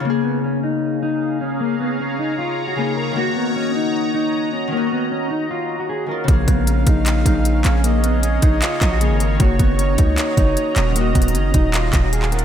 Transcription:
0.00 harp C#3
0.05 harp A#3, clean electric guitar A#3, analog synth pad G#4 C#5 F5 A#5
0.10 harp G#4
0.24 clean electric guitar B3
0.44 clean electric guitar C#4
0.63 clean electric guitar D#4
1.03 clean electric guitar D#4
1.41 clean electric guitar C#4
1.60 clean electric guitar A#3
1.80 clean electric guitar B3
2.00 clean electric guitar C#4
2.19 clean electric guitar D#4
2.39 clean electric guitar F4
2.68 clean electric guitar F#4
2.76 harp C#3 A#3, clean electric guitar G#4
2.80 harp D#4
2.97 clean electric guitar A#4
3.11 harp D#3
3.16 harp A#3, analog synth pad F#4 D#5, clean electric guitar F#4
3.21 harp F#4
3.36 clean electric guitar B3
3.56 clean electric guitar C#4
3.75 clean electric guitar D#4
4.14 clean electric guitar D#4
4.53 clean electric guitar C#4
4.68 harp D#3
4.72 clean electric guitar A#3, harp C#4
4.77 harp F#4
4.92 clean electric guitar B3
5.11 clean electric guitar C#4
5.31 clean electric guitar D#4
5.51 clean electric guitar F4
5.80 clean electric guitar F#4
5.89 clean electric guitar G#4
6.06 harp D#3 C#4, clean electric guitar A#4
6.11 harp F4
6.24 harp C#3
6.28 808-style bass A#1, clean electric guitar A#3, harp A#3, analog synth pad G#4 C#5 F5, soft synth lead F5, kick, closed hi-hat
6.33 harp G#4
6.48 808-style bass A#1, clean electric guitar B3, kick, closed hi-hat
6.67 clean electric guitar C#4, closed hi-hat
6.87 808-style bass A#1, clean electric guitar D#4, kick, closed hi-hat
7.06 clap, closed hi-hat
7.26 808-style bass A#1, clean electric guitar D#4, kick, closed hi-hat
7.45 closed hi-hat
7.64 808-style bass A#1, clean electric guitar C#4, clap, closed hi-hat
7.84 clean electric guitar A#3, soft synth lead D#5, closed hi-hat
8.04 clean electric guitar B3, closed hi-hat
8.23 clean electric guitar C#4, closed hi-hat
8.42 808-style bass A#1, clean electric guitar D#4, kick, closed hi-hat
8.62 clean electric guitar F4, clap, closed hi-hat
8.81 808-style bass A#1, kick, clap, closed hi-hat
8.91 clean electric guitar F#4
8.99 harp C#3 A#3, clean electric guitar G#4, closed hi-hat
9.04 harp D#4
9.11 808-style bass G#1
9.20 clean electric guitar A#4, closed hi-hat
9.35 harp D#3
9.40 808-style bass F#1, harp A#3, analog synth pad F#4 D#5 A#5, clean electric guitar F#4, soft synth lead C#5, kick, closed hi-hat
9.44 harp F#4
9.59 808-style bass F#1, clean electric guitar B3, kick, closed hi-hat
9.79 clean electric guitar C#4, closed hi-hat
9.98 808-style bass C#2, clean electric guitar D#4, kick, closed hi-hat
10.18 clap, closed hi-hat
10.37 808-style bass F#1, clean electric guitar D#4, kick, closed hi-hat
10.57 closed hi-hat
10.76 808-style bass D#1, clean electric guitar C#4, clap, closed hi-hat
10.91 harp D#3
10.96 clean electric guitar A#3, harp C#4, analog synth pad C#5, soft synth lead D#5, closed hi-hat
11.00 harp F#4
11.15 808-style bass D#1, clean electric guitar B3, kick, closed hi-hat
11.22 closed hi-hat
11.28 closed hi-hat
11.35 808-style bass F#1, clean electric guitar C#4, closed hi-hat
11.54 808-style bass D#1, clean electric guitar D#4, kick, closed hi-hat
11.74 clean electric guitar F4, clap, closed hi-hat
11.93 808-style bass D#1, kick, clap, closed hi-hat
12.03 clean electric guitar F#4
12.13 clean electric guitar G#4, soft synth lead F5, closed hi-hat
12.22 clap
12.30 harp D#3 C#4, clean electric guitar A#4, soft synth lead F#5, closed hi-hat
12.35 harp F4
12.39 closed hi-hat

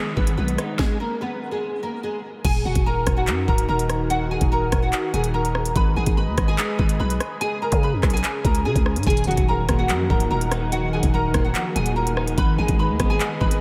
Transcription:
Already playing: clean electric guitar D#3 G#3 B3, nylon-string guitar G#3 G#4
0.17 808-style bass G#1, clean electric guitar G#3, nylon-string guitar B3 B4, kick
0.27 closed hi-hat
0.37 808-style bass B1, nylon-string guitar B3 B4
0.48 closed hi-hat
0.58 clean electric guitar D#4, cross-stick, closed hi-hat
0.79 nylon-string guitar G#3 G#4, kick, snare
1.00 nylon-string guitar A#3 A#4
1.21 nylon-string guitar B3 B4
1.51 nylon-string guitar G#3 G#4
1.83 nylon-string guitar A#3 A#4
2.03 nylon-string guitar G#3 G#4
2.45 808-style bass D#1, ambient pad D#3 D#4 F#4, nylon-string guitar G#4 G#5, kick, closed hi-hat, crash
2.65 808-style bass D#1, nylon-string guitar F#4 F#5
2.75 808-style bass D#1, kick, closed hi-hat
2.86 nylon-string guitar A#4 A#5
3.07 808-style bass D#1, kick, cross-stick, closed hi-hat
3.17 nylon-string guitar F#4 F#5
3.27 808-style bass F#2, clap, closed hi-hat
3.48 808-style bass C#1, nylon-string guitar A#4 A#5, kick
3.58 closed hi-hat
3.69 808-style bass D#1, nylon-string guitar A#4 A#5
3.79 closed hi-hat
3.90 cross-stick, closed hi-hat
4.10 nylon-string guitar F#4 F#5, closed hi-hat
4.31 nylon-string guitar G#4 G#5
4.41 808-style bass D#1, kick, closed hi-hat
4.52 nylon-string guitar A#4 A#5
4.72 808-style bass D#1, kick, cross-stick, closed hi-hat
4.82 nylon-string guitar F#4 F#5
4.93 clap, closed hi-hat
5.14 808-style bass D#1, nylon-string guitar G#4 G#5, closed hi-hat
5.24 closed hi-hat
5.34 nylon-string guitar A#4 A#5
5.45 closed hi-hat
5.55 cross-stick
5.65 closed hi-hat
5.76 808-style bass G#1, ambient pad G#3 G#4 B4 D#5, nylon-string guitar B4 B5, kick, closed hi-hat
5.96 808-style bass G#1, nylon-string guitar G#4 G#5
6.06 808-style bass G#1, kick, closed hi-hat
6.17 nylon-string guitar B4 B5
6.27 808-style bass D#2
6.38 808-style bass G#1, kick, cross-stick, closed hi-hat
6.48 nylon-string guitar G#4 G#5
6.58 clap, closed hi-hat
6.79 808-style bass G#1, nylon-string guitar B4 B5, kick
6.89 closed hi-hat
7.00 808-style bass B1, nylon-string guitar B4 B5
7.10 closed hi-hat
7.20 cross-stick, closed hi-hat
7.41 ambient pad C#3 C#4, nylon-string guitar G#4 G#5, closed hi-hat
7.62 nylon-string guitar A#4 A#5
7.72 808-style bass C#3, kick, closed hi-hat
7.83 nylon-string guitar B4 B5
7.93 808-style bass F2
8.03 808-style bass B1, kick, cross-stick, clap, closed hi-hat
8.10 nylon-string guitar G#5, closed hi-hat
8.14 nylon-string guitar G#4, closed hi-hat
8.24 clap, closed hi-hat
8.45 808-style bass C#2, nylon-string guitar A#4 A#5, kick, closed hi-hat
8.55 closed hi-hat
8.65 808-style bass C#3, nylon-string guitar G#4 G#5
8.76 808-style bass C#2, kick, closed hi-hat
8.86 cross-stick
8.96 808-style bass G#2, closed hi-hat
9.03 808-style bass D#1, clean electric guitar D#3, ambient pad D#3 D#4 F#5, nylon-string guitar G#5, kick, closed hi-hat
9.08 nylon-string guitar G#4, closed hi-hat
9.17 closed hi-hat
9.24 808-style bass D#1, clean electric guitar F#3, nylon-string guitar F#5, closed hi-hat
9.28 nylon-string guitar F#4, closed hi-hat
9.37 808-style bass D#1, kick, closed hi-hat
9.48 nylon-string guitar A#4 A#5
9.69 808-style bass D#1, clean electric guitar A#3, kick, cross-stick, closed hi-hat
9.79 nylon-string guitar F#4 F#5
9.89 808-style bass F#2, clean electric guitar F3, clap, closed hi-hat
10.10 808-style bass C#1, clean electric guitar F#3, nylon-string guitar A#4 A#5, kick
10.20 closed hi-hat
10.31 808-style bass D#1, nylon-string guitar A#4 A#5
10.41 closed hi-hat
10.51 clean electric guitar D#4, cross-stick, closed hi-hat
10.72 clean electric guitar D#3, nylon-string guitar F#4 F#5, closed hi-hat
10.93 clean electric guitar F#3, nylon-string guitar G#4 G#5
11.03 808-style bass D#1, kick, closed hi-hat
11.14 nylon-string guitar A#4 A#5
11.34 808-style bass D#1, clean electric guitar A#3, kick, cross-stick, closed hi-hat
11.45 nylon-string guitar F#4 F#5
11.55 clean electric guitar F3, clap, closed hi-hat
11.76 808-style bass D#1, clean electric guitar F#3, nylon-string guitar G#4 G#5, closed hi-hat
11.86 closed hi-hat
11.96 nylon-string guitar A#4 A#5
12.07 closed hi-hat
12.17 clean electric guitar D#4, cross-stick
12.27 closed hi-hat
12.38 808-style bass G#1, clean electric guitar D#3, ambient pad G#3 G#4 B4 D#5, nylon-string guitar B4 B5, kick, closed hi-hat
12.58 808-style bass G#1, clean electric guitar G#3, nylon-string guitar G#4 G#5
12.68 808-style bass G#1, kick, closed hi-hat
12.79 clean electric guitar D#3, nylon-string guitar B4 B5
12.89 808-style bass D#2
13.00 808-style bass G#1, clean electric guitar B3, kick, cross-stick, closed hi-hat
13.10 nylon-string guitar G#4 G#5
13.20 clean electric guitar D#3, clap, closed hi-hat
13.40 808-style bass G#1, clean electric guitar G#3, nylon-string guitar B4 B5, kick
13.51 closed hi-hat

